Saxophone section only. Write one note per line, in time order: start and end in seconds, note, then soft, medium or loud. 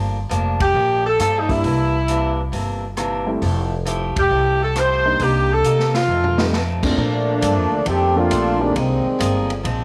0.62 1.03 G4 medium
1.06 1.19 A4 medium
1.20 1.39 A4 medium
1.39 1.49 D#4 medium
1.50 2.39 E4 medium
4.19 4.59 G4 medium
4.63 4.77 A4 medium
4.79 5.22 C5 loud
5.23 5.51 G4 medium
5.53 5.96 A4 medium
5.95 6.50 F4 medium